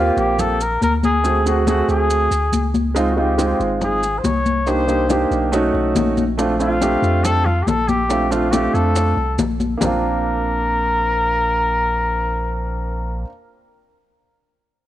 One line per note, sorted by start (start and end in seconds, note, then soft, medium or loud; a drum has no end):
0.00 0.11 D#2 medium
0.00 0.56 A#3 medium
0.00 0.56 C4 medium
0.00 0.20 F4 medium
0.00 0.56 F4 medium
0.00 0.57 G4 medium
0.17 0.77 A#1 medium
0.17 0.42 G4 medium
0.17 high conga soft
0.17 maracas soft
0.39 0.63 A4 loud
0.39 high conga soft
0.39 low conga medium
0.39 maracas medium
0.60 0.82 A#4 loud
0.60 high conga soft
0.60 maracas medium
0.81 1.82 D2 loud
0.81 0.93 A#4 medium
0.81 high conga medium
0.81 maracas medium
1.03 1.44 G#4 loud
1.03 high conga medium
1.03 maracas soft
1.23 1.39 A3 medium
1.23 1.39 C4 medium
1.23 1.40 F#4 medium
1.23 1.40 G#4 medium
1.23 maracas medium
1.45 1.60 A3 medium
1.45 1.61 C4 medium
1.45 1.61 F#4 medium
1.45 1.67 F#4 medium
1.45 1.61 G#4 medium
1.45 high conga soft
1.45 maracas medium
1.67 2.27 A3 medium
1.67 2.27 C4 medium
1.67 2.28 F#4 medium
1.67 1.88 F#4 medium
1.67 2.28 G#4 medium
1.67 high conga medium
1.67 maracas medium
1.88 2.28 D2 medium
1.88 2.71 G#4 medium
1.88 high conga soft
1.88 maracas soft
2.10 high conga soft
2.10 maracas medium
2.31 2.51 D2 medium
2.31 high conga soft
2.31 maracas medium
2.52 3.54 C#2 medium
2.52 high conga medium
2.52 maracas medium
2.74 high conga medium
2.74 maracas soft
2.95 3.10 G#3 medium
2.95 3.11 C4 medium
2.95 3.11 D#4 medium
2.95 3.11 F4 medium
2.95 high bongo medium
2.95 high conga soft
2.95 maracas medium
3.12 3.22 F#4 medium
3.17 3.32 G#3 medium
3.17 3.32 C4 medium
3.17 3.32 D#4 medium
3.17 3.33 F4 medium
3.17 3.62 G4 medium
3.17 high bongo soft
3.17 high conga soft
3.38 3.98 G#3 medium
3.38 3.99 C4 medium
3.38 3.99 D#4 medium
3.38 3.99 F4 medium
3.38 high bongo medium
3.38 high conga medium
3.38 maracas medium
3.60 4.20 G#1 loud
3.60 high bongo soft
3.60 high conga soft
3.60 maracas soft
3.81 4.20 G#4 medium
3.81 high bongo medium
3.81 high conga soft
3.81 low conga medium
3.81 maracas medium
4.03 high bongo soft
4.03 high conga soft
4.03 maracas medium
4.18 4.26 C5 medium
4.24 5.25 C2 medium
4.24 4.70 C#5 medium
4.24 high bongo soft
4.24 low bongo medium
4.24 high conga medium
4.24 maracas medium
4.46 high conga medium
4.46 maracas soft
4.66 4.82 A#3 medium
4.66 4.82 D4 medium
4.66 4.82 D#4 medium
4.66 4.83 G4 medium
4.66 5.53 C5 loud
4.66 high bongo medium
4.66 high conga soft
4.66 maracas medium
4.87 5.03 A#3 medium
4.87 5.03 D4 medium
4.87 5.04 D#4 medium
4.87 5.04 G4 medium
4.87 high bongo soft
4.87 high conga soft
4.87 maracas medium
5.09 5.52 A#3 medium
5.09 5.53 D4 medium
5.09 5.52 D#4 medium
5.09 5.53 G4 medium
5.09 high bongo medium
5.09 high conga medium
5.09 maracas medium
5.31 5.71 B1 medium
5.31 high bongo soft
5.31 high conga soft
5.31 maracas soft
5.52 6.21 A3 medium
5.52 6.21 C#4 medium
5.52 6.22 D#4 medium
5.52 6.22 F#4 loud
5.52 high bongo medium
5.52 high conga soft
5.52 maracas medium
5.74 5.94 B1 medium
5.74 high bongo soft
5.74 high conga soft
5.95 6.96 A#1 medium
5.95 high bongo soft
5.95 low bongo medium
5.95 high conga medium
5.95 maracas medium
6.17 high conga medium
6.17 maracas soft
6.38 6.53 A3 medium
6.38 6.53 C4 medium
6.38 6.54 D4 medium
6.38 6.54 F4 medium
6.38 high bongo medium
6.38 high conga soft
6.38 maracas medium
6.59 6.75 A3 medium
6.59 6.75 C4 medium
6.59 6.75 D4 medium
6.59 7.25 F4 loud
6.59 6.76 F4 medium
6.59 high bongo soft
6.59 high conga soft
6.59 maracas medium
6.81 7.41 A3 medium
6.81 7.41 C4 medium
6.81 7.42 D4 medium
6.81 7.42 G4 medium
6.81 high bongo medium
6.81 high conga medium
6.81 maracas medium
7.02 7.63 F2 loud
7.02 high bongo soft
7.02 high conga soft
7.02 maracas soft
7.24 7.47 A4 loud
7.24 high bongo medium
7.24 high conga soft
7.24 low conga medium
7.24 maracas medium
7.46 7.64 F4 medium
7.46 high bongo soft
7.46 high conga soft
7.46 low conga medium
7.63 8.68 A#1 medium
7.63 7.69 G4 medium
7.67 7.90 A4 loud
7.67 high bongo soft
7.67 low bongo medium
7.67 high conga medium
7.67 maracas medium
7.88 8.33 G4 medium
7.88 high conga medium
7.88 maracas soft
8.09 8.25 A3 medium
8.09 8.25 C4 medium
8.09 8.25 D4 medium
8.09 8.26 F4 medium
8.09 high bongo medium
8.09 high conga soft
8.09 maracas medium
8.31 8.46 A3 medium
8.31 8.46 C4 medium
8.31 8.47 D4 medium
8.31 8.54 F4 medium
8.31 8.47 F4 medium
8.31 high bongo soft
8.31 high conga soft
8.31 maracas medium
8.52 9.12 A3 medium
8.52 9.13 C4 medium
8.52 9.13 D4 medium
8.52 9.13 F4 medium
8.52 8.76 G4 medium
8.52 high bongo medium
8.52 high conga medium
8.52 maracas medium
8.74 9.14 F2 loud
8.74 9.38 A4 medium
8.74 high bongo soft
8.74 high conga soft
8.74 maracas soft
8.96 high bongo medium
8.96 high conga soft
8.96 maracas medium
9.16 9.37 C2 medium
9.16 high bongo soft
9.16 high conga soft
9.38 9.76 A#1 medium
9.38 high bongo soft
9.38 low bongo medium
9.38 high conga medium
9.38 maracas medium
9.60 high conga medium
9.60 maracas soft
9.78 13.24 A#1 medium
9.78 13.21 A#3 medium
9.78 13.24 C4 medium
9.78 low bongo loud
9.78 low conga loud
9.78 maracas medium
9.82 13.26 D4 medium
9.82 13.29 F4 medium
9.82 13.26 A#4 loud